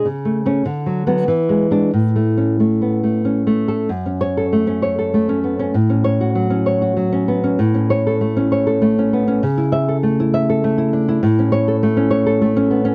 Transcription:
\new Staff \with { instrumentName = "Nylon-string guitar" } { \time 3/4 \key a \major \tempo 4 = 98 << { \tuplet 3/2 { r4 cis'8 r4 b8 r4 d'8 } | r2 \tuplet 3/2 { r4 a'8 } | \key fis \minor r8 cis''8 r2 | r8 cis''8 r2 |
r8 cis''8 r2 | r8 e''8 r2 | \key a \major r8 cis''8 r2 | } \\ { \tuplet 3/2 { cis8 a8 a8 d8 fis8 fis8 e8 gis8 gis8 } | \tuplet 3/2 { a,8 a8 cis'8 a8 b8 a8 cis'8 a4 } | fis,16 cis'8 a'16 a16 cis'16 cis''16 a'16 a16 cis'16 b16 cis'16 | a,16 cis'8 fis'16 fis16 cis'16 cis''16 fis'16 fis16 cis'16 b16 cis'16 |
a,16 cis'8 a'16 a16 cis'16 cis''16 a'16 a16 cis'16 b16 cis'16 | cis16 e'8 a'16 a16 e'16 e''16 a'16 a16 e'16 d'16 e'16 | a,16 cis'8 a'16 a16 cis'16 cis''16 a'16 a16 cis'16 b16 cis'16 | } >> }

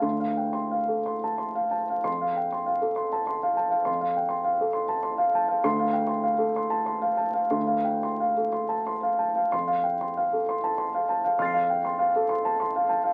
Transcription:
<<
  \new Staff \with { instrumentName = "Grand piano" } { \time 3/4 \key f \major \tempo 4 = 97 << { r2. | c'''8 r2 r8 | r2. | c'''8 r2 r8 |
r2. | c'''8 r2 r8 | <f''' a''' c''''>2. | } \\ { <f'' c'''>16 f''16 g''16 c'''16 f''16 a'16 c'''16 a''16 c'''16 f''16 a''16 f''16 | r16 f''16 g''16 c'''16 f''16 a'16 c'''16 a''16 c'''16 f''16 a''16 f''16 | c'''16 f''16 g''16 c'''16 f''16 a'16 c'''16 a''16 c'''16 f''16 a''16 f''16 | r16 f''16 g''16 c'''16 f''16 a'16 c'''16 a''16 c'''16 f''16 a''16 f''16 |
c'''16 f''16 g''16 c'''16 f''16 a'16 c'''16 a''16 c'''16 f''16 a''16 f''16 | r16 f''16 g''16 c'''16 f''16 a'16 c'''16 a''16 c'''16 f''16 a''16 f''16 | c'''16 f''16 g''16 c'''16 f''16 a'16 c'''16 a''16 c'''16 f''16 a''16 f''16 | } >> }
  \new Staff \with { instrumentName = "Grand piano" } { \clef bass \time 3/4 \key f \major d,2. | f,2. | f,2. | d,2. |
d,2. | f,2. | f,2. | }
>>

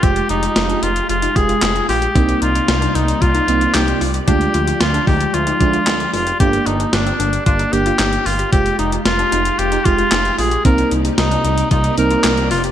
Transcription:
<<
  \new Staff \with { instrumentName = "Cor anglais" } { \time 4/4 \key c \minor \tempo 4 = 113 g'8 ees'4 f'8 f'8 aes'8 aes'8 g'8~ | g'8 f'4 ees'8 f'4 g'8 r8 | g'4 f'8 g'8 f'4. f'8 | g'8 ees'8 d'4 d'8 g'4 f'8 |
g'8 ees'8 f'4 g'8 f'4 aes'8 | bes'8 r8 ees'4 ees'8 bes'4 f'8 | }
  \new Staff \with { instrumentName = "Synth arpeggio sound" } { \time 4/4 \key c \minor c'8 ees'16 ees'8 d'16 ees'8 f'16 ees'8 f'16 ees'8 f'16 g'16 | c'8 ees'16 ees'8 d'16 ees'8 f'16 ees'8 f'16 ees'8 f'16 g'16 | d'8 f'16 f'8 d'16 ees'8 f'16 ees'8 f'16 ees'8 f'16 g'16 | bes8 d'16 d'8 c'16 d'8 f'16 ees'8 f'16 ees'8 f'16 g'16 |
c'8 ees'16 ees'8 d'16 ees'8 f'16 ees'8 f'16 ees'8 f'16 g'16 | c'8 ees'16 ees'8 d'16 ees'8 f'16 ees'8 f'16 ees'8 f'16 g'16 | }
  \new Staff \with { instrumentName = "FM electric piano" } { \time 4/4 \key c \minor <aes f' g'>4~ <aes f' g'>16 r4 r16 <aes f' g'>4 r8 | <bes c' ees'>4~ <bes c' ees'>16 r4 r16 <bes c' ees'>4 r8 | <aes d' f'>4~ <aes d' f'>16 r4 r16 <aes d' f'>4 r8 | <bes d' g'>4~ <bes d' g'>16 r4 r16 <bes d' g'>4 r8 |
<aes f' g'>4~ <aes f' g'>16 r4 r16 <aes f' g'>4 r8 | <bes c' ees'>4~ <bes c' ees'>16 r4 r16 <bes c' ees'>4 r8 | }
  \new Staff \with { instrumentName = "String machine" } { \time 4/4 \key c \minor << { <f' g'>1 | <c g ees' d''>1 | aes1 | bes1 |
<aes f'>1 | <c ees' d''>1 | } \\ { aes1 | bes1 | f1 | g'1~ |
g'1 | bes1 | } >> }
  \new Staff \with { instrumentName = "Analog synth bass" } { \clef bass \time 4/4 \key c \minor f,,8 f,,8 f,,8 f,,8 f,,8 f,,8 f,,8 bes,,8 | c,8 c,8 c,8 c,8 c,8 c,8 c,8 c,8 | d,8 d,8 d,8 d,8 d,8 d,8 d,8 f,,8 | g,,8 g,,8 g,,8 g,,8 g,,8 g,,8 g,,8 g,,8 |
f,,8 f,,8 f,,8 f,,8 f,,8 f,,8 f,,8 bes,,8 | c,8 c,8 c,8 c,8 c,8 c,8 c,8 f,,8 | }
  \new DrumStaff \with { instrumentName = "Drums" } \drummode { \time 4/4 <hh bd>16 hh16 hh16 hh16 <hh sn>16 hh16 hh16 hh16 hh16 hh16 <hh bd>16 hh16 <hc hh sn>16 hh16 hho16 hh16 | <hh bd>16 hh16 hh16 hh16 <hh sn>16 hh16 hh16 hh16 <hh bd>16 hh16 hh16 hh16 <hc hh sn>16 hh16 hho16 hh16 | <hh bd>16 hh16 hh16 hh16 <hh sn>16 hh16 <hho bd>16 hh16 hh16 hh16 <hh bd>16 hh16 <hc hh sn>16 hh16 hho16 hh16 | <hh bd>16 hh16 hh16 hh16 <hh sn>16 hh16 hh16 hh16 <hh bd>16 hh16 hh16 hh16 <hc hh sn>16 hh16 hho16 hh16 |
<hh bd>16 hh16 hh16 hh16 <hh sn>16 hh16 hh16 hh16 hh16 hh16 <hh bd>16 hh16 <hc hh sn>16 hh16 hho16 hh16 | <hh bd>16 hh16 hh16 hh16 <hh sn>16 hh16 hh16 hh16 <hh bd>16 hh16 hh16 hh16 <hc hh sn>16 hh16 hho16 hh16 | }
>>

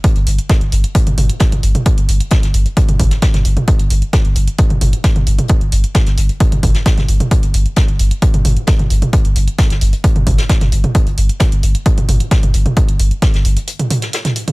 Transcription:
<<
  \new Staff \with { instrumentName = "Sub bass" } { \clef bass \time 4/4 \key c \minor \tempo 4 = 132 r16 g,,16 g,,16 r8 g,,16 g,,16 r8 g,,16 g,,16 r8 g,,16 g,,16 r16 | r16 g,,16 g,,16 r8 g,,16 g,,16 r8 g,,16 g,,16 r8 g,,16 g,,16 r16 | r16 g,,16 g,,16 r8 g,,16 g,,16 r8 g,,16 g,,16 r8 g,,16 g,,16 r16 | r16 g,,16 g,,16 r8 g,,16 g,,16 r8 g,,16 g,,16 r8 g,,16 g,,16 r16 |
r16 g,,16 g,,16 r8 g,,16 g,,16 r8 g,,16 g,,16 r8 g,,16 g,,16 r16 | r16 g,,16 g,,16 r8 g,,16 g,,16 r8 g,,16 g,,16 r8 g,,16 g,,16 r16 | r16 g,,16 g,,16 r8 g,,16 g,,16 r8 g,,16 g,,16 r8 g,,16 g,,16 r16 | r16 g,,16 g,,16 r8 g,,16 g,,16 r2 r16 | }
  \new DrumStaff \with { instrumentName = "Drums" } \drummode { \time 4/4 <hh bd>16 hh16 <hh hho>16 hh16 <hh bd sn>16 hh16 <hh hho>16 hh16 <hh bd>16 <hh toml>16 <hh hho toml>16 hh16 <hh bd sn>16 <hh toml>16 <hh hho>16 <hh toml>16 | <hh bd>16 hh16 <hh hho>16 hh16 <hh bd sn>16 <hh sn>16 <hh hho>16 hh16 <hh bd>16 <hh toml>16 <hh hho bd toml>16 <hh sn>16 <hh bd sn>16 <hh sn toml>16 <hh hho>16 <hh toml>16 | <hh bd>16 hh16 <hh hho>16 hh16 <hh bd sn>16 hh16 <hh hho>16 hh16 <hh bd>16 <hh toml>16 <hh hho toml>16 hh16 <hh bd sn>16 <hh toml>16 <hh hho>16 <hh toml>16 | <hh bd>16 hh16 <hh hho>16 hh16 <hh bd sn>16 <hh sn>16 <hh hho>16 hh16 <hh bd>16 <hh toml>16 <hh hho bd toml>16 <hh sn>16 <hh bd sn>16 <hh sn toml>16 <hh hho>16 <hh toml>16 |
<hh bd>16 hh16 <hh hho>16 hh16 <hh bd sn>16 hh16 <hh hho>16 hh16 <hh bd>16 <hh toml>16 <hh hho toml>16 hh16 <hh bd sn>16 <hh toml>16 <hh hho>16 <hh toml>16 | <hh bd>16 hh16 <hh hho>16 hh16 <hh bd sn>16 <hh sn>16 <hh hho>16 hh16 <hh bd>16 <hh toml>16 <hh hho bd toml>16 <hh sn>16 <hh bd sn>16 <hh sn toml>16 <hh hho>16 <hh toml>16 | <hh bd>16 hh16 <hh hho>16 hh16 <hh bd sn>16 hh16 <hh hho>16 hh16 <hh bd>16 <hh toml>16 <hh hho toml>16 hh16 <hh bd sn>16 <hh toml>16 <hh hho>16 <hh toml>16 | <hh bd>16 hh16 <hh hho>16 hh16 <hh bd sn>16 <hh sn>16 <hh hho>16 hh16 hh16 <hh toml>16 <hh hho toml>16 <hh sn>16 <hh sn>16 <hh sn toml>16 <hh hho>16 <hh toml>16 | }
>>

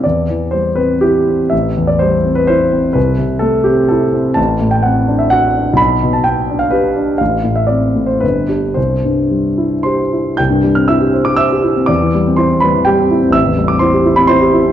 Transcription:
\new Staff \with { instrumentName = "Grand piano" } { \time 3/4 \key c \major \tempo 4 = 124 << { d''4 c''8 b'8 g'4 | e''8. d''16 c''8. b'16 c''4 | b'4 a'8 g'8 a'8 r8 | a''8. g''16 fis''8. e''16 fis''4 |
b''8. a''16 g''8. f''16 b'4 | f''8. e''16 d''8. c''16 b'4 | c''2 <c'' c'''>4 | <g'' g'''>8. f'''16 <e'' e'''>8. d'''16 <e'' e'''>4 |
<d'' d'''>4 <c'' c'''>8 <b' b''>8 <g' g''>4 | <e'' e'''>8. d'''16 <c'' c'''>8. b''16 <c'' c'''>4 | } \\ { e,8 e8 g8 c'8 e'8 c'8 | a,,8 e,8 g8 c'8 e'8 c'8 | c,8 c8 a8 c'8 e'8 c'8 | a,,8 a,8 c'8 d'8 fis'8 d'8 |
b,,8 b,8 b8 d'8 g'8 d'8 | a,,8 a,8 c'8 a,8 g,,8 <d' g'>8 | c,8 g,8 g8 e'8 g'8 e'8 | c,16 g,16 g16 c'16 e'16 g'16 c''16 g'16 c''16 g'16 e'16 c'16 |
e,16 e16 g16 c'16 e'16 c'16 g16 e16 g16 c'16 e'16 c'16 | a,,16 e,16 g16 c'16 e'16 g'16 e'16 c'16 e'16 g'16 e'16 c'16 | } >> }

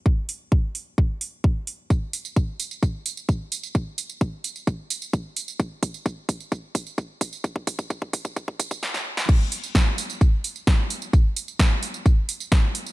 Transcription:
\new DrumStaff \with { instrumentName = "Drums" } \drummode { \time 4/4 \tempo 4 = 130 bd8 hho8 bd8 hho8 bd8 hho8 bd8 hho8 | <bd tamb>8 <hho tamb>16 tamb16 <bd tamb>8 <hho tamb>16 tamb16 <bd tamb>8 <hho tamb>16 tamb16 <bd tamb>8 <hho tamb>16 tamb16 | <bd tamb>8 <hho tamb>16 tamb16 <bd tamb>8 <hho tamb>16 tamb16 <bd tamb>8 <hho tamb>16 tamb16 <bd tamb>8 <hho tamb>16 tamb16 | <bd tamb>8 <hho bd tamb>16 tamb16 <bd tamb>8 <hho bd tamb>16 tamb16 <bd tamb>8 <hho bd tamb>16 tamb16 <bd tamb>8 <hho bd tamb>16 tamb16 |
<bd tamb>16 bd16 <hho bd tamb>16 <bd tamb>16 <bd tamb>16 bd16 <hho bd tamb>16 <bd tamb>16 <bd tamb>16 bd16 <hho bd tamb>16 <bd tamb>16 sn16 sn8 sn16 | <cymc bd tamb>8 <hho tamb>16 tamb16 <bd sn tamb>8 <hho tamb>16 tamb16 <bd tamb>8 <hho tamb>16 tamb16 <bd sn tamb>8 <hho tamb>16 tamb16 | <bd tamb>8 <hho tamb>16 tamb16 <bd sn tamb>8 <hho tamb>16 tamb16 <bd tamb>8 <hho tamb>16 tamb16 <bd sn tamb>8 <hho tamb>16 tamb16 | }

